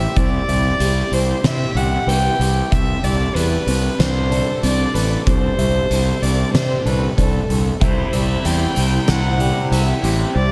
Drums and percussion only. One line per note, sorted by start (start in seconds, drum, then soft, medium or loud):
0.16 kick medium
0.16 closed hi-hat medium
0.49 closed hi-hat medium
0.80 closed hi-hat medium
1.13 closed hi-hat soft
1.44 snare medium
1.44 closed hi-hat medium
1.77 closed hi-hat soft
2.09 closed hi-hat medium
2.41 closed hi-hat medium
2.72 kick medium
2.72 closed hi-hat medium
3.04 closed hi-hat medium
3.36 closed hi-hat medium
3.68 closed hi-hat medium
4.00 snare loud
4.00 closed hi-hat medium
4.32 closed hi-hat medium
4.63 closed hi-hat medium
4.95 closed hi-hat medium
5.27 kick loud
5.27 closed hi-hat medium
5.59 closed hi-hat medium
5.91 closed hi-hat medium
6.23 closed hi-hat soft
6.55 snare loud
6.55 closed hi-hat medium
6.87 closed hi-hat soft
7.18 kick medium
7.18 closed hi-hat medium
7.50 closed hi-hat soft
7.81 kick loud
7.81 closed hi-hat medium
8.13 closed hi-hat medium
8.45 closed hi-hat medium
8.76 closed hi-hat medium
9.08 snare medium
9.08 closed hi-hat medium
9.40 closed hi-hat medium
9.72 closed hi-hat medium
10.04 closed hi-hat medium